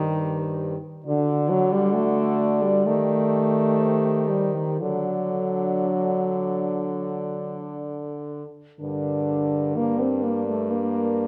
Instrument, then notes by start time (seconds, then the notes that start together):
french horn
Already playing: G2 D#3 G4 C5
1.05 D3 F#4 D5
1.49 F#3
1.72 G3
1.94 A3
2.63 G3
2.86 D#3 A3 G4
3.81 C5
4.30 G3
4.55 D#3
4.81 D3 F#3 D4 A4
8.80 G2 D3 D4 A#4
9.76 A#3 D4 A#4
10.00 C4
10.24 A#3
10.49 A3
10.71 A#3 D4 A#4